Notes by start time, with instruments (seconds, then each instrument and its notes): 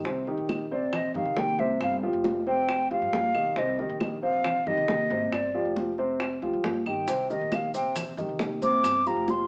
0.04 upright bass C2, grand piano C3 C4 C5, high bongo, high conga
0.27 grand piano D#3 D#4 G4, high bongo, high conga
0.37 upright bass A#1
0.49 high bongo, high conga, claves
0.71 grand piano C3 C4 C5, flute D5, high conga
0.93 flute D#5, high bongo, high conga, low conga, claves
1.14 upright bass G2, grand piano D#3 D#4 G4, flute F5, high bongo, high conga, low conga
1.25 upright bass C3
1.36 upright bass C3, grand piano D#3 D#4 G4, flute G5, high bongo, low bongo, high conga
1.58 upright bass C2, grand piano C3 C4 C5, flute E5, high bongo, high conga
1.80 upright bass G1, flute F5, high bongo, claves
2.03 grand piano F3 F4 G4, high conga
2.13 upright bass F1
2.24 high bongo, high conga
2.47 grand piano C3 C4 C5, flute G5, high bongo
2.69 high bongo, high conga, claves
2.91 upright bass D2, grand piano F3 F4 G4, flute F5, high bongo, high conga
3.02 upright bass G2
3.13 upright bass G2, high bongo, low bongo, high conga
3.35 upright bass B1, grand piano D#3 D#4 G4, high bongo, high conga, claves
3.56 upright bass C2, grand piano C3 C4 C5, flute D#5, high bongo, high conga
3.79 grand piano D#3 D#4 G4, high bongo, high conga
3.89 upright bass A#1
4.00 high bongo, high conga, claves
4.22 grand piano C3 C4 C5, flute F5, high conga
4.44 high bongo, high conga, low conga, claves
4.66 upright bass G2, grand piano D#3 D#4 G4, flute D#5, high bongo, high conga, low conga
4.77 upright bass C3
4.88 upright bass C3, grand piano D#3 G4, high bongo, low bongo, high conga
5.10 upright bass G#1, grand piano C3 C4 C5, high bongo, high conga
5.32 upright bass G1, flute D5, high bongo, high conga, claves
5.55 grand piano F3 F4 G4, high conga
5.65 upright bass F1
5.76 high bongo, high conga
5.98 grand piano C3 C4 C5, high bongo
6.20 high bongo, high conga, claves
6.42 upright bass D2, grand piano F3 F4 G4, high bongo, high conga
6.53 upright bass G2
6.64 upright bass G2, high bongo, low bongo, high conga
6.86 upright bass G1, grand piano D#3 D#4 G4, flute G5, high bongo, claves
7.08 upright bass C2, grand piano C3 C4 C5, high bongo, high conga, maracas
7.30 grand piano D#3 D#4 G4, flute D#5, high bongo, high conga, maracas
7.41 upright bass A#1
7.52 flute F5, high bongo, high conga, claves, maracas
7.74 grand piano C3 C4 C5, flute G5, high conga, maracas
7.96 high bongo, high conga, low conga, claves, maracas
8.17 upright bass G2, grand piano D#3 D#4 G4, high bongo, high conga, low conga, maracas
8.29 upright bass C3
8.39 upright bass C3, grand piano D#3 D#4 G4, high bongo, low bongo, high conga, maracas
8.62 upright bass C2, grand piano C3 C4 C5, flute D6, high bongo, high conga, maracas
8.83 upright bass G1, high bongo, claves, maracas
9.06 grand piano F3 F4 G4, flute A#5, high conga, maracas
9.16 upright bass F1
9.28 flute C6, high bongo, high conga, maracas